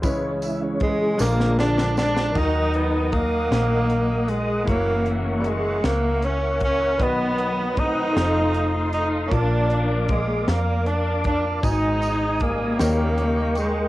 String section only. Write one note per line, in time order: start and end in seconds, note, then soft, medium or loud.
0.83 1.18 G#3 medium
1.21 2.33 D3 medium
1.21 2.33 F3 medium
1.21 1.59 A#3 loud
1.59 1.97 D4 medium
1.99 2.34 D4 loud
2.39 3.15 F#3 medium
2.39 3.14 D#4 medium
2.39 3.49 A#4 medium
3.16 4.26 D#3 medium
3.16 4.27 F#3 medium
3.16 4.30 A#3 medium
4.31 4.68 G#3 medium
4.70 5.81 C#3 medium
4.70 5.81 E3 medium
4.70 5.46 A#3 medium
5.47 5.85 G#3 medium
5.86 6.24 A#3 medium
6.25 6.62 C#4 medium
6.64 6.98 C#4 medium
7.02 8.13 D#3 medium
7.02 8.13 F#3 medium
7.02 7.78 B3 medium
7.80 8.91 A3 medium
7.80 8.91 C4 medium
7.80 8.94 D#4 medium
8.96 9.30 D#4 medium
9.34 10.45 F3 medium
9.34 10.45 A#3 medium
9.34 10.10 D4 medium
10.11 10.49 G#3 medium
10.49 10.87 A#3 medium
10.88 11.26 D4 medium
11.27 11.44 D4 medium
11.67 12.77 G#3 medium
11.67 12.38 D#4 medium
12.43 13.54 C#3 medium
12.43 13.54 G3 medium
12.43 13.54 A#3 medium
13.58 13.88 G#3 medium